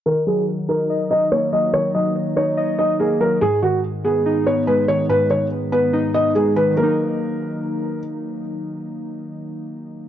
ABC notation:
X:1
M:4/4
L:1/8
Q:1/4=143
K:Ebm
V:1 name="Felt piano"
B A z B2 e d e | d e z d2 e A B | A G z A2 d c d | c d z c2 e A c |
B6 z2 | z8 |]
V:2 name="Synth keys"
E, G,2 E e E B, G, | E, G,2 E e E B, G, | A,, E,2 C E C A, E, | A,, E,2 C E C A, E, |
[E,G,B,E]8- | [E,G,B,E]8 |]